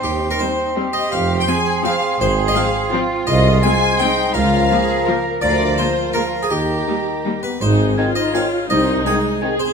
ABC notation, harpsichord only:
X:1
M:3/4
L:1/16
Q:1/4=167
K:Fdor
V:1 name="Harpsichord"
G3 B c4 z2 e2 | f3 g a4 f4 | c3 e f4 z4 | [K:Ab] e4 a4 g4 |
f8- f2 z2 | =d4 c4 B3 A | G8- G2 _c2 | c6 e2 f4 |
e4 A4 z2 c2 |]